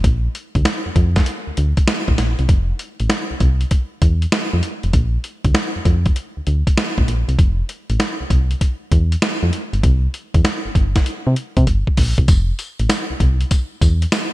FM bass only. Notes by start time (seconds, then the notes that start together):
0.04 A#1
0.55 D2
0.86 F2
0.96 F2
1.47 D2
1.58 D2
2.08 A#1
2.19 A#1
2.39 C2
2.49 F1
3.00 A1
3.31 C2
3.41 C2
4.02 E2
4.54 F2
4.84 F1
4.94 A#1
5.45 D2
5.76 F2
5.86 F2
6.37 D2
6.47 D2
6.98 A#1
7.08 A#1
7.29 C2
7.39 F1
7.90 A1
8.21 C2
8.31 C2
8.92 E2
9.43 F2
9.73 G1
9.84 C2
10.35 E2
10.65 G1
10.75 G1
11.27 C3
11.57 C3
11.67 G1
11.98 A#1
12.18 C2
12.29 F1
12.80 A1
13.10 C2
13.21 C2
13.82 E2